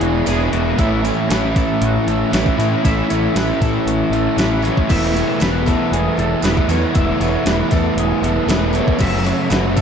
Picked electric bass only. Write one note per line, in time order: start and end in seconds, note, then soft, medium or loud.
0.01 0.21 E1 medium
0.27 0.47 E1 medium
0.53 0.73 E1 medium
0.78 1.10 A1 medium
1.30 1.62 A1 medium
1.82 1.97 A1 medium
2.07 2.23 A1 medium
2.33 2.49 A1 medium
2.58 2.74 A2 medium
2.85 3.00 A1 medium
3.11 3.27 A1 medium
3.36 3.51 A1 medium
3.61 3.77 A2 medium
3.86 4.02 A1 medium
4.10 4.26 A1 medium
4.37 4.69 A1 medium
4.90 5.21 E1 medium
5.41 5.73 E1 medium
5.92 6.08 E1 medium
6.18 6.34 E1 medium
6.43 6.59 E1 medium
6.68 6.84 E2 medium
6.95 7.11 E1 loud
7.20 7.36 E1 medium
7.46 7.62 E1 medium
7.72 7.88 E2 medium
7.96 8.12 E1 medium
8.22 8.38 E1 medium
8.47 8.79 E1 medium
9.00 9.31 F#1 medium
9.51 9.81 F#1 medium